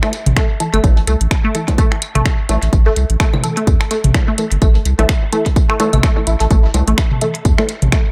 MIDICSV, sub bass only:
0, 0, Header, 1, 2, 480
1, 0, Start_track
1, 0, Key_signature, 0, "minor"
1, 0, Tempo, 472441
1, 852, Time_signature, 4, 2, 24, 8
1, 8249, End_track
2, 0, Start_track
2, 0, Title_t, "Sub bass"
2, 0, Program_c, 0, 38
2, 269, Note_on_c, 0, 33, 83
2, 336, Note_off_c, 0, 33, 0
2, 746, Note_on_c, 0, 31, 93
2, 815, Note_off_c, 0, 31, 0
2, 851, Note_on_c, 0, 33, 96
2, 1020, Note_off_c, 0, 33, 0
2, 1090, Note_on_c, 0, 36, 85
2, 1180, Note_off_c, 0, 36, 0
2, 1227, Note_on_c, 0, 33, 92
2, 1295, Note_off_c, 0, 33, 0
2, 2188, Note_on_c, 0, 33, 90
2, 2256, Note_off_c, 0, 33, 0
2, 2531, Note_on_c, 0, 33, 93
2, 2621, Note_off_c, 0, 33, 0
2, 2668, Note_on_c, 0, 33, 90
2, 2736, Note_off_c, 0, 33, 0
2, 2771, Note_on_c, 0, 33, 98
2, 2940, Note_off_c, 0, 33, 0
2, 3012, Note_on_c, 0, 36, 87
2, 3101, Note_off_c, 0, 36, 0
2, 3148, Note_on_c, 0, 33, 93
2, 3216, Note_off_c, 0, 33, 0
2, 3731, Note_on_c, 0, 40, 93
2, 3821, Note_off_c, 0, 40, 0
2, 4107, Note_on_c, 0, 33, 83
2, 4176, Note_off_c, 0, 33, 0
2, 4588, Note_on_c, 0, 31, 94
2, 4656, Note_off_c, 0, 31, 0
2, 4691, Note_on_c, 0, 33, 97
2, 4860, Note_off_c, 0, 33, 0
2, 4930, Note_on_c, 0, 36, 88
2, 5020, Note_off_c, 0, 36, 0
2, 5069, Note_on_c, 0, 33, 97
2, 5136, Note_off_c, 0, 33, 0
2, 6028, Note_on_c, 0, 33, 90
2, 6096, Note_off_c, 0, 33, 0
2, 6371, Note_on_c, 0, 33, 90
2, 6461, Note_off_c, 0, 33, 0
2, 6507, Note_on_c, 0, 33, 89
2, 6576, Note_off_c, 0, 33, 0
2, 6611, Note_on_c, 0, 33, 100
2, 6780, Note_off_c, 0, 33, 0
2, 6850, Note_on_c, 0, 36, 85
2, 6940, Note_off_c, 0, 36, 0
2, 6987, Note_on_c, 0, 33, 93
2, 7056, Note_off_c, 0, 33, 0
2, 7571, Note_on_c, 0, 40, 92
2, 7661, Note_off_c, 0, 40, 0
2, 7948, Note_on_c, 0, 33, 80
2, 8016, Note_off_c, 0, 33, 0
2, 8249, End_track
0, 0, End_of_file